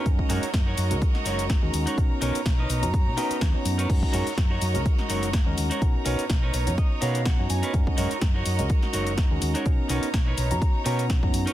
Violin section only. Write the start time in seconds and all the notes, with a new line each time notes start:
Already playing: A#5
0.06 F#4 D#5
1.98 D#4 C#5
3.90 F#4 D#5
5.81 D#4 C#5
7.74 F#4 D#5
9.66 D#4 C#5 A#5